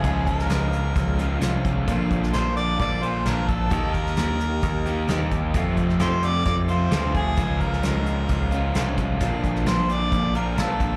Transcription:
Already playing: G#4
0.04 C#2 C#3 F3 G#3 C#4 F4, kick, closed hi-hat
0.26 A#4, kick, closed hi-hat
0.39 snare
0.49 C#2 F3 G#3 C#4 F4, snare, closed hi-hat
0.72 G#3 C#4 F4, closed hi-hat
0.95 C#2 F3 G#3 C#4 F4, kick, closed hi-hat
1.19 C#3 F3 G#3 C#4 F4, closed hi-hat
1.40 C2 C#3 F3 G#3 C#4, snare, closed hi-hat
1.45 F4
1.65 kick, closed hi-hat
1.88 A#1 A#2 D3 F3 A#3 D4 F4, kick, closed hi-hat
2.11 kick, closed hi-hat
2.23 snare
2.33 A#1 F3 A#3 D4 F4 C5, snare, closed hi-hat
2.56 A#3 D4 F4 D5, closed hi-hat
2.79 A#1 F3 A#3 D4 F4 D5, kick, closed hi-hat
3.02 A#2 D3 A#3 D4 F4 C5, closed hi-hat
3.25 A#1 A#2 D3 F3 A#3 D4 F4 A#4, snare, closed hi-hat
3.48 A4, kick, closed hi-hat
3.70 D#2 D#3 A#3 D#4 G4, kick, closed hi-hat
3.93 A#4, kick, closed hi-hat
4.06 snare
4.16 D#2 D#3 A#3 D#4 G4, snare, closed hi-hat
4.40 A#3 D#4 G4, closed hi-hat
4.62 D#2 D#3 A#3 D#4 G4, kick, closed hi-hat
4.86 D#3 A#3 D#4 G4, closed hi-hat
5.08 D#2 D#3 A#3 D#4 G4, snare, closed hi-hat
5.31 kick, closed hi-hat
5.54 F2 C3 F3 A3 C4 F4, kick, closed hi-hat
5.77 kick, closed hi-hat
5.89 snare
5.99 F2 F3 A3 C4 F4 C5, snare, closed hi-hat
6.23 F3 A3 C4 F4 D5, closed hi-hat
6.45 F2 F3 A3 C4 F4 D5, kick, closed hi-hat
6.68 F2 C3 F3 A3 C4 F4 C5, closed hi-hat
6.91 D2 F2 C3 F3 A3 C4 F4, snare, closed hi-hat
7.15 G#4, kick, closed hi-hat
7.37 C#2 C#3 F3 G#3 C#4 F4, kick, closed hi-hat
7.60 A#4, kick, closed hi-hat
7.73 snare
7.82 C#2 F3 G#3 C#4 F4, snare, closed hi-hat
8.06 G#3 C#4 F4, closed hi-hat
8.29 C#2 F3 G#3 C#4 F4, kick, closed hi-hat
8.51 C#3 F3 G#3 C#4 F4, closed hi-hat
8.74 C2 C#3 F3 G#3 C#4 F4, snare, closed hi-hat
8.97 kick, closed hi-hat
9.20 A#1 A#2 D3 F3 A#3 D4 F4, kick, closed hi-hat
9.44 kick, closed hi-hat
9.56 snare
9.66 A#1 F3 A#3 D4 F4 C5, snare, closed hi-hat
9.89 A#3 D4 F4 D5, closed hi-hat
10.12 A#1 F3 A#3 D4 F4, kick, closed hi-hat
10.34 A#2 D3 A#3 D4 F4 A#4, closed hi-hat
10.56 A#1 A#2 D3 F3 A#3 D4 F4 A4, snare, closed hi-hat
10.80 kick, closed hi-hat

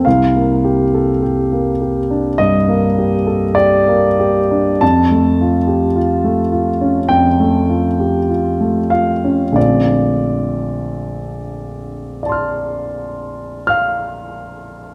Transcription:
0.05 C2 F5
0.36 A#3
0.65 G4
0.94 A4
1.23 G4
1.52 A#3
1.81 G4
2.10 D4
2.38 G2 D#5
2.68 A#3
2.98 G4
3.27 A4
3.55 G4 D5
3.88 A#3
4.19 G4
4.51 D4
4.81 F2 A5
5.11 A3
5.41 F4
5.67 G4
5.96 F4
6.24 A3
6.52 F4
6.81 C#4
7.09 F2 G5
7.40 A3
7.69 F4
8.00 G4
8.29 F4
8.61 A3
8.90 F4 F5
9.24 C#4
9.52 A#1 D3 A3 C4 D5
9.56 F4
12.23 D5 A5
12.29 C6 F6
13.67 F5 F6

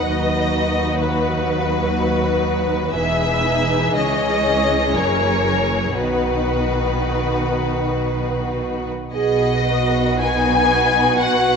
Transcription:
Already playing: D#4 B4
0.03 D#2 F#3 F#4 D#5
0.99 B4
2.96 E1 E2 E3 D#4 G#4 B4 E5
3.96 C#2 C#4 C#5 D#5
4.94 F#1 F#2 A#4 C#5
5.97 B1 B2 D#3 D#4 F#4 B4
9.13 B1 B2 F#4 G#4 B4 D#5
9.66 F#4
10.20 D#4 G#5
11.17 F#4 F#5

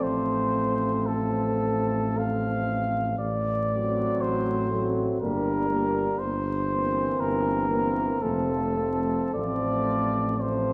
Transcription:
Already playing: F3 A3 C4
0.03 A1 C5
1.06 A4
2.18 F5
3.19 A1 D5
3.69 F#3 A3 C4
4.20 A1 C5
4.70 F#3 A3 C4
5.20 G1 G3 A#3 D4 A#4
5.69 G3 A#3 D4
6.19 G1 C5
6.69 E3 A#3 C4
7.20 G1 A#4
7.69 E3 A#3 C4
8.21 F1 F3 A3 C4 A4
8.76 F3 A3 C4
9.33 A1 F3 A3 C4 D5
10.39 F3 A3 C4 C5

